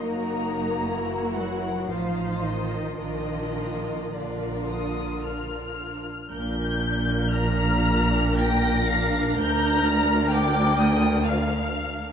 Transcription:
<<
  \new Staff \with { instrumentName = "Violin section" } { \time 3/4 \key bes \major \tempo 4 = 60 bes''4. ges''8 f''8 ees''8 | ees''4 d''8 ees'''8 f'''4 | g'''4 f'''4 bes'''4 | g'''8 f'''8 d'''8 ees'''8 f'''4 | }
  \new Staff \with { instrumentName = "Violin section" } { \time 3/4 \key bes \major <ges' bes'>4 <ges' bes'>4 <f' c''>4 | <f' bes'>4 <f' bes'>2 | r4 bes''4 g''8 f''8 | bes''4 g''4 f''4 | }
  \new Staff \with { instrumentName = "Viola section" } { \time 3/4 \key bes \major <ges ees'>4 <fes fes'>4 <f ees'>4 | <f d'>4 <f d'>2 | <d' bes'>2.~ | <d' bes'>2. | }
  \new Staff \with { instrumentName = "Cello section" } { \clef bass \time 3/4 \key bes \major bes4. ges8 f8 ees8 | ees4 d4. r8 | bes,2. | d,2. | }
  \new Staff \with { instrumentName = "Double bass section" } { \clef bass \time 3/4 \key bes \major ges,,2 a,,4 | bes,,2. | bes,,2. | d,2. | }
>>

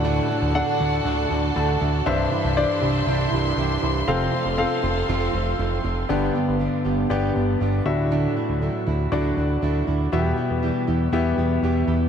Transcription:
<<
  \new Staff \with { instrumentName = "String section" } { \time 4/4 \key g \major \tempo 4 = 119 << { a''1 | c'''1~ | c'''1 | r1 |
r1 | r1 | } \\ { <fis' a' d''>1 | <g' e''>1 | <a' c'' f''>1 | r1 |
r1 | r1 | } >> }
  \new Staff \with { instrumentName = "Grand piano" } { \time 4/4 \key g \major <d' a' fis''>8 r8 <d' a' fis''>4. r8 a''4 | <d' c'' e''>8. r16 <d' c'' d''>4. r4. | <c' a' f''>8. r16 <c' a' f''>4. r4. | <b g' d''>4. r8 <b g' d''>4. <d' fis' e''>8~ |
<d' fis' e''>4 r4 <d' fis' d''>4. r8 | <b fis' g' e''>4. r8 <b g' e''>4. r8 | }
  \new Staff \with { instrumentName = "Grand piano" } { \clef bass \time 4/4 \key g \major a,4 r2. | g,4. r2 r8 | c4. r2 r8 | <g, d>4. r2 a,8~ |
a,4 r2. | b,4. r2 r8 | }
  \new Staff \with { instrumentName = "Steel-string acoustic guitar" } { \time 4/4 \key g \major <d a d' fis'>8 <a d' fis'>8 <d a d' fis'>8 <a d' fis'>8 <d a d' fis'>8 <a d' fis'>8 <d a d' fis'>8 <a d' fis'>8 | <c e g d' e'>8 <g d' e'>8 <e g d' e'>8 <g d' e'>8 <c e g d' e'>8 <g d' e'>8 <e g d' e'>8 <g d' e'>8 | <f, c f a c' f'>8 <f a c' f'>8 <f a c' f'>8 <f a c' f'>8 <f, c f a c' f'>8 <f a c' f'>8 <f a c' f'>8 <f a c' f'>8 | <g, d g b d' g'>8 <g b d' g'>8 <g b d' g'>8 <g b d' g'>8 <g, d g b d' g'>8 <g b d' g'>8 <g b d' g'>8 <a d' e'>8 |
<d fis a d' e'>8 <a d' e'>8 <fis a d' e'>8 <a d' e'>8 <d fis a d' e'>8 <a d' e'>8 <fis a d' e'>8 <a d' e'>8 | <e, b, e g e' g'>8 <e g e' g'>8 <e g e' g'>8 <e g e' g'>8 <e, b, e g e' g'>8 <e g e' g'>8 <e g e' g'>8 <e g e' g'>8 | }
  \new Staff \with { instrumentName = "Analog synth bass" } { \clef bass \time 4/4 \key g \major d,8 r16 d,8 r16 d,8 d,8 d,8 d,8 d,8 | c,8 r16 c,8 r16 c,8 c,8 c,8 c,8 c,8 | f,,8 r16 f,,8 r16 f,,8 f,,8 f,,8 f,,8 f,,8 | g,,8 r16 g,,8 r16 g,,8 g,,8 g,,8 g,,8 d,8~ |
d,8 r16 d,8 r16 d,8 d,8 d,8 d,8 d,8 | e,8 r16 e,8 r16 e,8 e,8 e,8 e,8 e,8 | }
>>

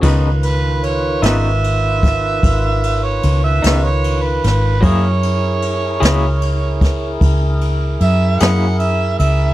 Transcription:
<<
  \new Staff \with { instrumentName = "Harmonica" } { \time 12/8 \key des \mixolydian \tempo 4. = 50 r8 ces''8 des''8 fes''2~ fes''16 des''8 fes''8 des''8 ces''8. | des''2. r4 fes''8 ges''8 fes''8 fes''8 | }
  \new Staff \with { instrumentName = "Tonewheel organ" } { \time 12/8 \key des \mixolydian <ees f' ces''>1. | <fes' aes' bes'>1. | }
  \new Staff \with { instrumentName = "Clean electric guitar" } { \time 12/8 \key des \mixolydian <des f ces' ees'>8 r4 <des f ces' ees'>8 r2 r8 <des f ces' ees'>8 r4 | <ges bes fes' aes'>8 r4 <ges bes fes' aes'>8 r2 r8 <ges bes fes' aes'>8 r4 | }
  \new Staff \with { instrumentName = "Fingered electric bass" } { \clef bass \time 12/8 \key des \mixolydian des,4. aes,,4. aes,,4 des,8 des,4 aes,,8 | ges,4. des,4. des,4 ges,8 ges,4 des,8 | }
  \new DrumStaff \with { instrumentName = "Drums" } \drummode { \time 12/8 <cymc bd>8 cymr8 cymr8 <cymr sn>8 cymr8 <bd cymr sn>8 <bd cymr>8 cymr8 cymr8 <cymr sn>8 cymr8 <cymr sn>8 | <bd cymr>8 cymr8 cymr8 <cymr sn>8 cymr8 <bd cymr sn>8 <bd cymr>8 cymr8 cymr8 <cymr sn>8 cymr8 cymr8 | }
>>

